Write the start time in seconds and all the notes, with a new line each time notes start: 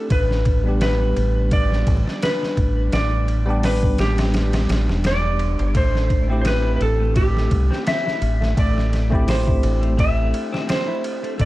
Already playing: D4
0.10 A1 B4, kick, ride
0.31 snare
0.45 kick, ride
0.63 G3 B3 D4
0.69 G4
0.81 B4, snare, ride
1.16 A1, ride
1.51 D5, kick, ride
1.72 snare
1.87 A1, kick, ride
2.07 snare
2.22 B4, snare, ride
2.43 snare
2.57 A1, kick, ride
2.92 A1 D5, snare, ride
3.28 ride
3.46 G3 B3 D4
3.50 G4
3.63 B4, snare, open hi-hat
3.83 kick
3.98 A1 G4, snare, ride
4.18 snare, ride
4.34 snare, ride
4.53 snare, ride
4.69 A1, snare, ride
4.89 E1, snare
5.04 D5, snare, ride
5.39 ride
5.59 G1, ride
5.75 A1 A3 D4 C5, kick, ride
5.95 snare
6.10 kick, ride
6.28 A3 C4 E4
6.32 G4
6.41 C4 C5, ride
6.45 B4, snare
6.65 E4
6.76 B4
6.81 A1 A4, ride
7.00 A3
7.16 A3 G4, kick, ride
7.37 snare
7.51 C2, kick, ride
7.71 C4, snare
7.86 C4 E5, snare, ride
8.06 E4, snare
8.22 A1, ride
8.41 A3, snare
8.57 A1 A3 D5, kick, ride
8.78 snare
8.93 snare, ride
9.10 A3 C4 E4, kick
9.15 G4
9.27 C4 C5, snare, open hi-hat
9.47 E4, kick
9.63 A1, ride
9.81 A3, ride
9.97 A3 E5, kick, ride
10.34 ride
10.52 C4, snare
10.67 C4 C5, snare, ride
10.87 E4
11.04 ride
11.23 A3, ride
11.38 A1 A3 D5, kick, ride